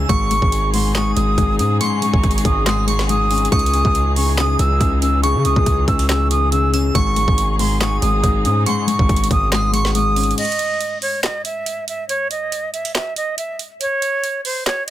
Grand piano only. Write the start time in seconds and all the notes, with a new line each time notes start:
Already playing: C#3 C#4
0.09 G#2
0.31 G#2
0.74 G#2
0.95 G#2
1.16 G#2
1.38 G#2
1.59 C#4
1.81 G#2
2.02 G#2
2.45 G#2
2.66 G#2
2.87 G#2
3.10 G#2
3.31 C#4
3.52 C#3
3.73 C#3
4.17 C#3
4.38 C#3
4.59 C#3
4.81 C#3
5.02 C#4
5.23 C#3
5.45 C#3
5.89 C#3
6.10 C#3
6.31 C#3
6.52 C#3
6.74 C#4
6.95 G#2
7.17 G#2
7.60 G#2
7.81 G#2
8.02 G#2
8.24 G#2
8.45 C#4
8.67 G#2
8.87 G#2
9.31 G#2
9.52 G#2
9.73 G#2
9.95 G#2
10.16 C#4